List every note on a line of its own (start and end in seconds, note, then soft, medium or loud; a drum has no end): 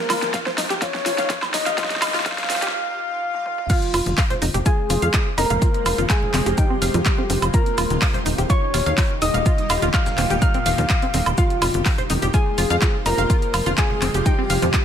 0.00 2.71 A#2 medium
0.00 2.71 D#3 medium
0.00 2.71 G3 medium
0.00 2.71 D#4 medium
0.00 1.76 G4 medium
0.00 0.29 A#4 loud
0.10 0.18 D#1 loud
0.10 0.14 F4 medium
0.10 snare medium
0.10 open hi-hat loud
0.10 high woodblock medium
0.10 shaker medium
0.22 0.30 D#1 medium
0.22 snare medium
0.22 closed hi-hat medium
0.22 shaker soft
0.34 0.38 F5 medium
0.34 kick loud
0.34 snare loud
0.34 closed hi-hat medium
0.34 shaker soft
0.46 0.50 C5 medium
0.46 snare medium
0.46 shaker soft
0.58 0.66 D#1 loud
0.58 0.60 D#4 medium
0.58 snare loud
0.58 open hi-hat loud
0.58 shaker medium
0.70 0.78 D#1 medium
0.70 0.74 G4 medium
0.70 snare medium
0.70 closed hi-hat medium
0.70 shaker soft
0.82 0.84 F4 medium
0.82 1.45 C#5 loud
0.82 kick loud
0.82 snare loud
0.82 closed hi-hat medium
0.82 shaker medium
0.94 snare medium
0.94 shaker soft
1.06 1.14 D#1 loud
1.06 1.10 F4 medium
1.06 snare medium
1.06 open hi-hat loud
1.06 shaker medium
1.18 1.26 D#1 medium
1.18 1.24 F5 medium
1.18 snare medium
1.18 closed hi-hat medium
1.18 shaker soft
1.30 1.32 F4 medium
1.30 kick loud
1.30 snare loud
1.30 closed hi-hat medium
1.30 shaker soft
1.42 snare medium
1.42 high woodblock medium
1.42 shaker soft
1.54 1.62 D#1 medium
1.54 1.56 D#4 medium
1.54 2.17 D#5 loud
1.54 snare loud
1.54 open hi-hat loud
1.54 shaker medium
1.66 1.74 D#1 medium
1.66 1.70 F5 medium
1.66 snare medium
1.66 closed hi-hat medium
1.66 shaker soft
1.78 1.84 F4 medium
1.78 2.73 F4 medium
1.78 kick loud
1.78 snare loud
1.78 closed hi-hat medium
1.78 shaker soft
1.84 snare medium
1.90 snare medium
1.90 closed hi-hat soft
1.90 shaker soft
1.96 snare medium
2.02 2.10 D#1 medium
2.02 2.04 F5 loud
2.02 snare loud
2.02 open hi-hat loud
2.02 high woodblock medium
2.02 shaker medium
2.08 snare medium
2.14 2.22 D#1 medium
2.14 2.20 F4 loud
2.14 snare medium
2.14 open hi-hat medium
2.14 shaker soft
2.20 snare medium
2.26 2.28 F4 medium
2.26 2.69 F5 medium
2.26 kick loud
2.26 snare loud
2.26 closed hi-hat medium
2.26 shaker soft
2.32 snare medium
2.38 snare medium
2.38 closed hi-hat soft
2.38 shaker soft
2.44 snare medium
2.50 2.58 D#1 loud
2.50 2.54 C4 medium
2.50 snare loud
2.50 open hi-hat loud
2.50 shaker medium
2.56 snare loud
2.62 2.70 D#1 medium
2.62 2.66 G4 medium
2.62 snare medium
2.62 closed hi-hat medium
2.62 shaker soft
2.68 snare medium
2.74 3.61 F5 loud
3.34 high tom medium
3.46 mid tom medium
3.58 mid tom medium
3.70 7.50 C3 medium
3.70 7.50 F3 medium
3.70 7.50 G#3 medium
3.70 7.50 F4 medium
3.70 3.77 F4 medium
3.70 4.13 F4 loud
3.70 7.50 C5 medium
3.70 4.13 F5 loud
3.70 kick loud
3.70 closed hi-hat medium
3.70 crash loud
3.70 shaker medium
3.70 shaker soft
3.82 closed hi-hat soft
3.94 4.02 F1 medium
3.94 3.98 F4 medium
3.94 open hi-hat loud
3.94 high woodblock medium
3.94 shaker medium
4.06 4.14 F1 medium
4.06 closed hi-hat medium
4.06 high conga medium
4.06 shaker soft
4.18 4.22 F5 medium
4.18 kick loud
4.18 snare loud
4.18 clap loud
4.18 closed hi-hat medium
4.18 open hi-hat medium
4.18 shaker soft
4.30 4.34 C5 medium
4.30 closed hi-hat soft
4.30 low conga medium
4.42 4.50 F1 loud
4.42 4.44 D#4 medium
4.42 open hi-hat loud
4.42 high conga medium
4.42 shaker medium
4.54 4.62 F1 medium
4.54 4.58 G4 medium
4.54 closed hi-hat soft
4.54 closed hi-hat medium
4.54 low conga medium
4.54 shaker soft
4.66 4.69 F4 medium
4.66 5.29 G#4 loud
4.66 5.29 G#5 medium
4.66 kick loud
4.66 closed hi-hat medium
4.66 shaker medium
4.66 shaker soft
4.90 4.98 F1 medium
4.90 4.94 F4 medium
4.90 open hi-hat loud
4.90 shaker medium
5.02 5.10 F2 medium
5.02 5.08 F5 medium
5.02 closed hi-hat medium
5.02 high conga medium
5.02 shaker soft
5.14 5.17 F4 medium
5.14 kick loud
5.14 snare loud
5.14 clap loud
5.14 closed hi-hat medium
5.14 shaker medium
5.14 shaker soft
5.38 5.46 F1 medium
5.38 5.41 D#4 medium
5.38 6.01 A#4 loud
5.38 6.01 A#5 medium
5.38 open hi-hat loud
5.38 high bongo medium
5.38 shaker medium
5.50 5.58 F1 medium
5.50 5.54 F5 medium
5.50 closed hi-hat medium
5.50 low conga loud
5.50 shaker soft
5.62 5.69 F4 medium
5.62 kick loud
5.62 closed hi-hat medium
5.62 shaker medium
5.62 shaker soft
5.74 closed hi-hat soft
5.86 5.94 F1 loud
5.86 5.89 F5 loud
5.86 open hi-hat loud
5.86 high woodblock medium
5.86 shaker medium
5.98 6.06 F1 medium
5.98 6.04 F4 loud
5.98 closed hi-hat medium
5.98 high conga medium
5.98 shaker soft
6.10 6.13 F4 medium
6.10 6.53 G#4 medium
6.10 6.53 G#5 medium
6.10 kick loud
6.10 snare loud
6.10 clap loud
6.10 closed hi-hat medium
6.10 shaker medium
6.10 shaker soft
6.23 low conga medium
6.33 6.42 F1 medium
6.33 6.38 C4 medium
6.33 clap medium
6.33 open hi-hat loud
6.33 high conga medium
6.33 shaker medium
6.46 6.54 F1 medium
6.46 6.50 G4 medium
6.46 closed hi-hat medium
6.46 closed hi-hat soft
6.46 shaker soft
6.58 6.64 D#4 medium
6.58 7.45 G4 loud
6.58 7.45 G5 medium
6.58 kick loud
6.58 closed hi-hat medium
6.58 shaker medium
6.58 shaker soft
6.70 6.74 C4 medium
6.82 6.90 F1 loud
6.82 6.84 F5 loud
6.82 open hi-hat loud
6.82 shaker medium
6.94 7.02 F2 medium
6.94 6.97 F3 loud
6.94 snare soft
6.94 closed hi-hat medium
6.94 high conga medium
6.94 low conga medium
6.94 shaker soft
7.05 7.08 F4 medium
7.05 kick loud
7.05 snare loud
7.05 clap loud
7.05 closed hi-hat medium
7.05 shaker medium
7.05 shaker soft
7.18 7.21 C4 medium
7.18 high bongo medium
7.30 7.38 F1 medium
7.30 7.34 C4 medium
7.30 open hi-hat loud
7.30 high bongo medium
7.30 shaker medium
7.42 7.50 F1 medium
7.42 closed hi-hat medium
7.42 high woodblock medium
7.42 shaker soft
7.54 11.34 A#2 medium
7.54 11.34 D#3 medium
7.54 11.34 G3 medium
7.54 11.34 D#4 medium
7.54 7.60 F4 medium
7.54 11.34 G4 medium
7.54 7.97 A#4 loud
7.54 7.97 A#5 loud
7.54 kick loud
7.54 closed hi-hat medium
7.54 shaker medium
7.54 shaker soft
7.66 closed hi-hat soft
7.78 7.86 D#1 loud
7.78 7.82 F4 medium
7.78 open hi-hat loud
7.78 high woodblock medium
7.78 shaker medium
7.90 7.98 D#1 medium
7.90 closed hi-hat medium
7.90 high conga medium
7.90 shaker soft
8.02 8.06 F5 medium
8.02 kick loud
8.02 snare loud
8.02 clap loud
8.02 closed hi-hat medium
8.02 open hi-hat medium
8.02 shaker soft
8.13 8.18 C5 medium
8.13 closed hi-hat soft
8.13 low conga medium
8.25 8.34 D#1 loud
8.25 8.28 D#4 medium
8.25 open hi-hat loud
8.25 high conga medium
8.25 shaker medium
8.38 8.46 D#1 medium
8.38 8.42 G4 medium
8.38 closed hi-hat medium
8.38 closed hi-hat soft
8.38 low conga medium
8.38 shaker soft
8.50 8.53 F4 medium
8.50 9.13 C#5 loud
8.50 9.13 C#6 loud
8.50 kick loud
8.50 closed hi-hat medium
8.50 shaker medium
8.50 shaker soft
8.74 8.82 D#1 loud
8.74 8.78 F4 medium
8.74 snare loud
8.74 open hi-hat loud
8.74 open hi-hat medium
8.74 shaker medium
8.86 8.94 D#2 medium
8.86 8.92 F5 medium
8.86 closed hi-hat soft
8.86 high conga medium
8.86 shaker soft
8.98 9.01 F4 medium
8.98 kick loud
8.98 snare loud
8.98 clap loud
8.98 closed hi-hat medium
8.98 open hi-hat medium
8.98 shaker soft
9.22 9.30 D#1 medium
9.22 9.25 D#4 medium
9.22 9.85 D#5 loud
9.22 9.85 D#6 loud
9.22 open hi-hat loud
9.22 high bongo medium
9.22 shaker medium
9.34 9.42 D#1 medium
9.34 9.38 F5 medium
9.34 closed hi-hat medium
9.34 low conga loud
9.34 shaker soft
9.46 9.53 F4 medium
9.46 kick loud
9.46 closed hi-hat medium
9.46 shaker medium
9.46 shaker soft
9.58 closed hi-hat soft
9.70 9.78 D#1 medium
9.70 9.72 F5 loud
9.70 snare loud
9.70 open hi-hat loud
9.70 high woodblock medium
9.70 shaker medium
9.82 9.90 D#1 medium
9.82 9.88 F4 loud
9.82 closed hi-hat medium
9.82 high conga medium
9.82 shaker soft
9.94 9.97 F4 medium
9.94 10.37 F5 medium
9.94 10.37 F6 medium
9.94 kick loud
9.94 clap loud
9.94 closed hi-hat medium
9.94 shaker medium
9.94 shaker soft
10.06 snare loud
10.06 low conga medium
10.06 shaker medium
10.18 10.26 D#1 loud
10.18 10.22 C4 medium
10.18 clap medium
10.18 open hi-hat loud
10.18 high conga medium
10.18 shaker medium
10.30 10.38 D#1 medium
10.30 10.34 G4 medium
10.30 closed hi-hat soft
10.30 low conga medium
10.30 shaker medium
10.30 shaker soft
10.42 10.48 D#4 medium
10.42 11.29 F5 loud
10.42 11.29 F6 loud
10.42 kick loud
10.42 closed hi-hat medium
10.42 shaker medium
10.42 shaker soft
10.54 10.58 C4 medium
10.54 closed hi-hat soft
10.66 10.74 D#1 medium
10.66 10.69 F5 loud
10.66 open hi-hat loud
10.66 high conga medium
10.66 shaker medium
10.78 10.86 D#2 medium
10.78 10.81 F3 loud
10.78 snare soft
10.78 closed hi-hat soft
10.78 high conga medium
10.78 low conga medium
10.78 shaker soft
10.90 10.93 F4 medium
10.90 kick loud
10.90 snare loud
10.90 clap loud
10.90 closed hi-hat medium
10.90 shaker medium
10.90 shaker soft
11.02 11.05 C4 medium
11.02 closed hi-hat soft
11.02 high bongo medium
11.14 11.22 D#1 medium
11.14 11.18 C4 medium
11.14 open hi-hat loud
11.14 high bongo medium
11.14 shaker medium
11.26 11.34 D#1 medium
11.26 closed hi-hat medium
11.26 high woodblock medium
11.26 shaker soft
11.38 14.85 C3 medium
11.38 14.85 F3 medium
11.38 14.85 G#3 medium
11.38 11.81 F4 loud
11.38 14.85 F4 medium
11.38 11.45 F4 medium
11.38 14.85 C5 medium
11.38 11.81 F5 loud
11.38 kick loud
11.38 closed hi-hat medium
11.38 shaker medium
11.38 shaker soft
11.50 closed hi-hat soft
11.62 11.70 F1 loud
11.62 11.66 F4 medium
11.62 open hi-hat loud
11.62 high woodblock medium
11.62 shaker medium
11.74 11.82 F1 medium
11.74 closed hi-hat medium
11.74 high conga medium
11.74 shaker soft
11.85 11.90 F5 medium
11.85 kick loud
11.85 snare loud
11.85 clap loud
11.85 closed hi-hat medium
11.85 open hi-hat medium
11.85 shaker soft
11.98 12.02 C5 medium
11.98 closed hi-hat soft
11.98 low conga medium
12.10 12.18 F1 medium
12.10 12.13 D#4 medium
12.10 open hi-hat loud
12.10 high conga medium
12.10 shaker medium
12.22 12.30 F1 medium
12.22 12.26 G4 medium
12.22 closed hi-hat medium
12.22 closed hi-hat soft
12.22 low conga medium
12.22 shaker soft
12.34 12.37 F4 medium
12.34 12.97 G#4 loud
12.34 12.97 G#5 loud
12.34 kick loud
12.34 closed hi-hat medium
12.34 shaker medium
12.34 shaker soft
12.58 12.66 F1 loud
12.58 12.62 F4 medium
12.58 open hi-hat loud
12.58 shaker medium
12.70 12.78 F2 medium
12.70 12.77 F5 medium
12.70 closed hi-hat medium
12.70 high conga medium
12.70 shaker soft
12.81 12.85 F4 medium
12.81 kick loud
12.81 snare loud
12.81 clap loud
12.81 closed hi-hat medium
12.81 shaker medium
12.81 shaker soft
13.06 13.14 F1 medium
13.06 13.09 D#4 medium
13.06 13.69 A#4 loud
13.06 13.69 A#5 loud
13.06 open hi-hat loud
13.06 high bongo medium
13.06 shaker medium
13.18 13.26 F1 medium
13.18 13.22 F5 medium
13.18 closed hi-hat soft
13.18 low conga medium
13.18 shaker soft
13.30 13.37 F4 medium
13.30 kick loud
13.30 closed hi-hat medium
13.30 shaker medium
13.30 shaker soft
13.42 closed hi-hat soft
13.54 13.62 F1 medium
13.54 13.57 F5 loud
13.54 open hi-hat loud
13.54 high woodblock medium
13.54 shaker medium
13.66 13.74 F1 medium
13.66 13.72 F4 loud
13.66 closed hi-hat medium
13.66 high conga medium
13.66 shaker soft
13.78 13.81 F4 medium
13.78 14.27 G#4 medium
13.78 14.26 G#5 medium
13.78 kick loud
13.78 snare loud
13.78 clap loud
13.78 closed hi-hat medium
13.78 shaker medium
13.78 shaker soft
13.90 low conga medium
14.02 14.10 F1 medium
14.02 14.06 C4 medium
14.02 clap medium
14.02 open hi-hat loud
14.02 high conga medium
14.02 shaker medium
14.14 14.22 F1 medium
14.14 14.18 G4 medium
14.14 closed hi-hat soft
14.14 closed hi-hat medium
14.14 shaker soft
14.26 14.33 D#4 medium
14.26 14.85 G4 loud
14.26 14.85 G5 loud
14.26 kick loud
14.26 closed hi-hat medium
14.26 shaker medium
14.26 shaker soft
14.38 14.42 C4 medium
14.50 14.58 F1 medium
14.50 14.53 F5 loud
14.50 open hi-hat loud
14.50 shaker medium
14.62 14.70 F2 medium
14.62 14.65 F3 loud
14.62 snare soft
14.62 closed hi-hat medium
14.62 high conga medium
14.62 low conga medium
14.62 shaker soft
14.74 14.77 F4 medium
14.74 kick loud
14.74 snare loud
14.74 clap loud
14.74 closed hi-hat medium
14.74 shaker medium
14.74 shaker soft